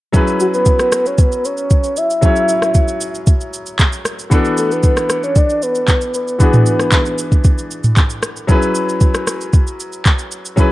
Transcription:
0.12 F#3 C#4 E4 G#4 B4, kick, shaker
0.27 shaker
0.40 F#4, shaker
0.54 B4, shaker
0.66 kick, shaker
0.79 cross-stick, shaker
0.92 cross-stick, shaker
1.06 C#5, shaker
1.18 B4, kick, shaker
1.32 shaker
1.45 C#5, shaker
1.57 shaker
1.70 kick, shaker
1.84 shaker
1.97 E5, shaker
2.10 shaker
2.21 F#3 C#4 E4 G#4 C#5, kick, shaker
2.36 shaker
2.49 shaker
2.62 cross-stick, shaker
2.74 kick, shaker
2.88 shaker
3.01 shaker
3.15 shaker
3.27 kick, shaker
3.41 shaker
3.54 shaker
3.66 shaker
3.79 kick, clap, shaker
3.93 shaker
4.05 cross-stick, shaker
4.19 shaker
4.30 E3 B3 D4 F#4 A4, kick, shaker
4.45 shaker
4.57 A4, shaker
4.71 B4, shaker
4.83 kick, shaker
4.97 cross-stick, shaker
5.10 cross-stick, shaker
5.23 C#5, shaker
5.36 D5, kick, shaker
5.50 shaker
5.62 B4, shaker
5.75 shaker
5.88 kick, clap, shaker
6.01 shaker
6.14 B4, shaker
6.28 shaker
6.39 E3 B3 D4 F#4 G#4, kick, shaker
6.53 mid tom, shaker
6.66 shaker
6.79 cross-stick, shaker
6.92 kick, clap, shaker
7.06 shaker
7.18 shaker
7.32 kick, shaker
7.44 kick, shaker
7.58 shaker
7.71 shaker
7.84 mid tom, shaker
7.97 kick, clap, shaker
8.10 shaker
8.23 cross-stick, shaker
8.37 shaker
8.47 F#3 C#4 E4 G#4 B4, kick, shaker
8.62 shaker
8.75 shaker
8.89 shaker
9.01 kick, shaker
9.14 cross-stick, shaker
9.27 cross-stick, shaker
9.41 shaker
9.53 kick, shaker
9.67 shaker
9.80 shaker
9.93 shaker
10.05 kick, clap, shaker
10.19 shaker
10.32 shaker
10.45 shaker
10.56 F#3 C#4 E4 G#4 B4, kick, shaker

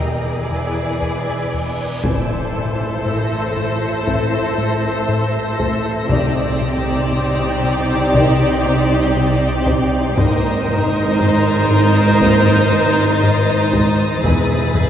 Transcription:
Already playing: reverse cymbal
0.00 E1 E2 E4 G#4 B4 D5 G#5
0.51 E2
1.02 E2
1.54 E2
2.03 A1 A2 E3 C4 E4 A4 C5 E5 E6, taiko, impact
2.55 A2
3.06 A2 A#6
3.57 A2
4.07 A2 E3 C4, taiko
4.58 A2
5.09 A2
5.59 A3, taiko
6.09 C2 C3 D#3 D#4 G4 C5 D5 G5, taiko
6.61 C3
7.12 C3
7.64 C3
8.14 C3 D#3 D5, taiko
8.66 C3
9.16 C3
9.66 C4, taiko
10.16 G#1 G#2 A#3 C4 D#4 A#4 C5 D#5 A#5 D#6, taiko
10.68 G#2, taiko low
11.19 G#2 A6, taiko low
11.71 G#2
12.21 G#2 A#3 C4, taiko
12.46 taiko low
12.73 G#2
13.23 G#2
13.73 G#3, taiko
14.23 E1 E2 G#3 B3 E4 G#4 B4 E5, taiko, cymbal swell
14.32 E2
14.40 E2
14.47 E2
14.55 E2
14.61 E2
14.69 E2
14.75 E2, taiko low
14.84 E2

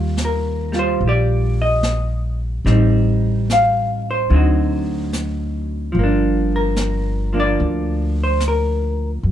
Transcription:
Already playing: D#2 D#3 G3 F4
0.17 snare, hi-hat pedal
0.25 A#4
0.72 G3 F4, snare
0.79 C5
1.00 A#1, brush sweep
1.08 G4 D5
1.62 D#5
1.83 snare, hi-hat pedal
2.65 A1 G3 C4 D#4, brush sweep, snare
3.50 F5, snare, hi-hat pedal
4.11 C5
4.30 D2 D3 F#3 C4, brush sweep
4.34 D#4 F#4
5.13 snare, hi-hat pedal
5.92 G1 F3, brush sweep
5.99 A#3
6.04 D4
6.56 A#4
6.76 snare, hi-hat pedal
7.33 F3 A#3 D4
7.40 D5
7.59 D2, brush sweep
8.24 C5
8.40 snare, hi-hat pedal
8.48 A#4
9.23 F#2, brush sweep

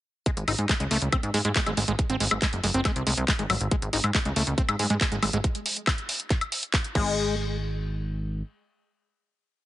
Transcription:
0.26 G#3, kick, closed hi-hat
0.37 G#1, closed hi-hat
0.48 G#1 D#4, open hi-hat, high woodblock
0.59 G#2, closed hi-hat
0.69 G#3, kick, clap, closed hi-hat
0.80 C#2 G#3, closed hi-hat
0.91 C#2 A3, open hi-hat
1.02 C#2, closed hi-hat
1.12 C4, kick, closed hi-hat, high woodblock
1.23 G#2, closed hi-hat
1.34 G#2 G#3, open hi-hat
1.45 G#2 G#3, closed hi-hat
1.56 G#3, kick, clap, closed hi-hat
1.66 G#1 G#3, closed hi-hat, high woodblock
1.77 G#1 G#3, open hi-hat
1.88 G#1 G#3, closed hi-hat
1.99 kick, closed hi-hat
2.10 G#1 C4, closed hi-hat
2.20 G#1 G#3, open hi-hat
2.31 G#1 G#3, high woodblock
2.42 G#3, kick, clap, closed hi-hat
2.53 F#1, closed hi-hat
2.64 F#1 G#3, open hi-hat
2.74 F#1 C4, closed hi-hat
2.85 G#3, kick, clap, closed hi-hat, high woodblock
2.96 C2, closed hi-hat
3.07 C2 G#3, open hi-hat
3.17 C2, closed hi-hat
3.28 G#3, kick, clap, closed hi-hat
3.39 G#1 G#3, closed hi-hat
3.50 G#1 F#3, open hi-hat, high woodblock
3.61 G#1, closed hi-hat
3.71 G#3, kick, closed hi-hat
3.82 G#1, closed hi-hat
3.93 G#1 D#4, open hi-hat
4.04 G#2, closed hi-hat, high woodblock
4.15 G#3, kick, clap, closed hi-hat
4.25 C#2 G#3, closed hi-hat
4.36 C#2 A3, open hi-hat
4.47 C#2, closed hi-hat
4.58 C4, kick, closed hi-hat
4.69 G#2, closed hi-hat, high woodblock
4.79 G#2 G#3, open hi-hat
4.90 G#2 G#3, closed hi-hat
5.01 G#3, kick, clap, closed hi-hat
5.12 G#1 G#3, closed hi-hat
5.23 G#1 G#3, open hi-hat, high woodblock
5.33 G#1 G#3, closed hi-hat
5.44 kick, closed hi-hat
5.55 closed hi-hat
5.66 open hi-hat
5.77 closed hi-hat
5.87 kick, clap, closed hi-hat, high woodblock
5.98 closed hi-hat
6.09 open hi-hat
6.20 closed hi-hat
6.30 kick, clap, closed hi-hat
6.41 closed hi-hat, high woodblock
6.52 open hi-hat
6.63 closed hi-hat
6.74 kick, clap, closed hi-hat
6.84 closed hi-hat
6.95 G#1 G#3, kick, crash

